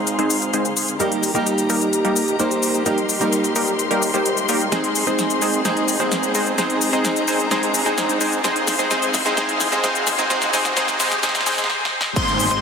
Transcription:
Already playing: G#1 G#3 C4 D#4 G#4 A#4 C5 F5 C6, riser
0.07 closed hi-hat, shaker
0.19 G#1 G#3 C4 D#4 G#4 C5, closed hi-hat
0.30 open hi-hat, shaker
0.42 closed hi-hat, shaker
0.53 G#1 G#3 C4 D#4 G#4 C5, closed hi-hat, shaker
0.65 closed hi-hat, shaker
0.77 open hi-hat, shaker
0.88 closed hi-hat, shaker
0.99 D#1 G3 A#3 D#4 G4 A#4 D#5 A#5, closed hi-hat, shaker
1.12 closed hi-hat
1.23 open hi-hat, shaker
1.34 D#1 G3 A#3 D#4 G4 A#4, closed hi-hat, shaker
1.47 closed hi-hat, shaker
1.58 closed hi-hat, shaker
1.70 D#1 G3 A#3 D#4 G4 A#4, open hi-hat, shaker
1.81 closed hi-hat, shaker
1.93 closed hi-hat, shaker
2.05 D#1 G3 A#3 D#4 G4 A#4, closed hi-hat
2.16 open hi-hat, shaker
2.28 closed hi-hat, shaker
2.39 D#1 G3 A#3 D#4 G4 A#4 C5, closed hi-hat, shaker
2.51 closed hi-hat, shaker
2.63 open hi-hat, shaker
2.74 closed hi-hat, shaker
2.85 D#1 G3 A#3 D#4 G4 A#4 C6, closed hi-hat, shaker
2.98 closed hi-hat
3.09 open hi-hat, shaker
3.20 D#1 G3 A#3 D#4 G4 A#4, closed hi-hat, shaker
3.33 closed hi-hat, shaker
3.44 closed hi-hat, shaker
3.56 D#1 G3 A#3 D#4 G4 A#4, open hi-hat, shaker
3.67 closed hi-hat, shaker
3.79 closed hi-hat, shaker
3.91 D#1 G3 A#3 D#4 G4 A#4, closed hi-hat
4.02 open hi-hat, shaker
4.14 D#1 G3 A#3 D#4 G4 C5, closed hi-hat, shaker
4.26 closed hi-hat, shaker
4.37 closed hi-hat, shaker
4.49 D#1 G3 A#3 D#4 G4 A#4, open hi-hat, shaker
4.61 closed hi-hat, shaker
4.71 G#1 G#3 C4 D#4 G#4 C5 D#5, snare, closed hi-hat, shaker
4.84 closed hi-hat
4.95 open hi-hat, shaker
5.06 G#1 G#3 C4 D#4 G#4 C5, closed hi-hat, shaker
5.19 snare, closed hi-hat, shaker
5.30 closed hi-hat, shaker
5.42 G#1 G#3 C4 D#4 G#4 C5, open hi-hat, shaker
5.53 closed hi-hat, shaker
5.64 G#1 G#3 C4 D#4 G#4 C5, snare, closed hi-hat, shaker
5.77 closed hi-hat
5.88 open hi-hat, shaker
5.99 G#1 G#3 C4 D#4 G#4 C5, closed hi-hat, shaker
6.12 snare, closed hi-hat, shaker
6.23 closed hi-hat, shaker
6.35 G#1 G#3 C4 D#4 G#4 C5, open hi-hat, shaker
6.47 closed hi-hat, shaker
6.58 G#1 G#3 C4 D#4 G#4 C5 A#5, snare, closed hi-hat, shaker
6.70 closed hi-hat
6.81 open hi-hat, shaker
6.92 G#1 G#3 C4 D#4 G#4 C5, closed hi-hat, shaker
7.05 snare, closed hi-hat, shaker
7.16 closed hi-hat, shaker
7.28 G#1 G#3 C4 D#4 G#4 C5, open hi-hat, shaker
7.40 closed hi-hat, shaker
7.50 G#1 G#3 C4 D#4 G#4 C5, snare, closed hi-hat, shaker
7.63 closed hi-hat
7.74 open hi-hat, shaker
7.85 G#1 G#3 C4 D#4 G#4 C5, closed hi-hat, shaker
7.98 snare, closed hi-hat, shaker
8.09 closed hi-hat, shaker
8.21 G#2 G#3 C4 D#4 G#4 C5, open hi-hat, shaker
8.33 closed hi-hat, shaker
8.44 F1 G#3 C4 D#4 G#4 C5 F5 C6, snare, closed hi-hat, shaker
8.56 closed hi-hat
8.67 snare, open hi-hat, shaker
8.78 G#3 C4 D#4 G#4 C5, closed hi-hat, shaker
8.90 G#3 C4 D#4 G#4 C5, snare, closed hi-hat, shaker
9.02 closed hi-hat, shaker
9.14 snare, open hi-hat, shaker
9.24 G#3 C4 D#4 G#4 C5, closed hi-hat, shaker
9.37 G#3 C4 D#4 G#4 C5, snare, closed hi-hat, shaker
9.49 closed hi-hat
9.60 snare, open hi-hat, shaker
9.71 G#3 C4 D#4 G#4 C5, closed hi-hat, shaker
9.83 G#3 C4 D#4 G#4 C5, snare, closed hi-hat, shaker
9.95 closed hi-hat, shaker
10.07 snare, open hi-hat, shaker
10.17 G#3 C4 D#4 G#4 C5, closed hi-hat, shaker
10.30 G#3 C4 D#4 G#4 C5, snare, closed hi-hat, shaker
10.42 snare, closed hi-hat, shaker
10.53 G#3 C4 D#4 G#4 C5, snare, open hi-hat, shaker
10.65 snare, closed hi-hat, shaker
10.76 G#3 C4 D#4 G#4 C5, snare, closed hi-hat, shaker
10.88 snare, closed hi-hat, shaker
10.99 G#3 C4 D#4 G#4 C5, snare, open hi-hat, shaker
11.12 snare, closed hi-hat, shaker
11.23 G#3 C4 D#4 G#4 C5, snare, closed hi-hat, shaker
11.29 snare
11.35 snare, closed hi-hat, shaker
11.41 snare
11.46 G#3 C4 D#4 G#4 C5, snare, open hi-hat, shaker
11.52 snare
11.58 snare, closed hi-hat, shaker
11.64 snare
11.70 snare
11.85 snare
12.01 snare
12.16 G#1 G#3 C4 D#4 G#4 C5 C6, kick, closed hi-hat, crash, downlifter, shaker
12.28 closed hi-hat
12.40 open hi-hat, shaker
12.51 G#1 G#3 C4 D#4 G#4 C5 C6, closed hi-hat, shaker

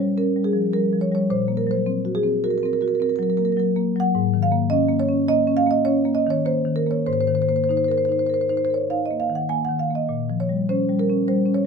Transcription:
Already playing: A#2 G3 C#5
0.17 C#4 A#4
0.36 G3
0.44 G#4
0.53 F3
0.73 G3 A#4
0.93 F3
1.01 C#5
1.12 G3 C#5
1.30 A#2 C5
1.48 A#3
1.57 A#4
1.67 F#3
1.71 C5
1.86 C4
2.05 F#4
2.15 G#4
2.23 C4
2.44 F#4 A#4
2.51 A#4
2.58 A#4
2.63 C4 A#4
2.73 A#4
2.81 F#4 A#4
2.88 A#4
2.95 A#4
3.00 C4 A#4
3.10 A#4
3.16 F#3 A#4
3.23 A#4
3.30 A#4
3.37 A#3 A#4
3.45 A#4
3.52 A#4
3.57 F#3 A#4
3.76 A#3
3.96 F#3
4.00 F#5
4.15 G#2
4.34 D#3
4.43 F5
4.52 A#3
4.70 C#4 D#5
4.89 A#3
5.00 C#5
5.09 C#4
5.28 A#3 D#5
5.47 C#4
5.57 F5
5.67 A#3
5.71 D#5
5.85 C#4 C#5
6.05 A#3
6.15 D#5
6.27 D#3 C#5
6.46 A#3 C5
6.65 D#3
6.76 A#4
6.87 A#3
6.91 C#5
7.06 G#2 C5
7.13 C5
7.21 C5
7.27 D#3 C5
7.35 C5
7.42 C5
7.49 A#3 C5
7.56 C5
7.64 C5
7.69 D#4 C5
7.77 C5
7.84 C5
7.88 A#4 C5
7.98 C5
8.05 D#4 C5
8.12 C5
8.19 C5
8.27 A#4 C5
8.34 C5
8.41 C5
8.49 D#4 C5
8.57 C5
8.65 C5
8.70 A#4 C#5
8.90 D#4 F5
9.06 D#5
9.11 A#3
9.20 F5
9.30 D#3
9.35 F#5
9.49 A#3 G#5
9.65 F#5
9.69 D#3
9.79 F5
9.90 A#3
9.95 D#5
10.09 A#2
10.30 F3
10.40 C#5
10.49 G3
10.69 C#4 C5
10.89 G3
10.99 A#4
11.10 C#4
11.28 G3 C5
11.46 C#4
11.54 C#5

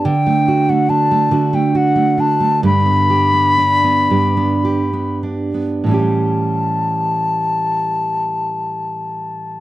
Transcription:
Already playing: B3 D4 G4
0.05 D3 G5
0.27 A3
0.48 F#4
0.69 A3 F#5
0.89 D4 A5
1.11 A3
1.31 D3 F#4
1.53 A3 G5
1.75 F#4 F#5
1.96 A3
2.18 D4 A5
2.40 A3
2.63 G2 G4 B5
2.86 B3
3.10 G4
3.34 B3
3.58 D4
3.84 B3
4.10 G2 G4
4.37 B3
4.65 G4
4.93 B3
5.23 D4
5.54 B3
5.84 A2 E3 A5
5.89 G3 C#4
5.93 G4

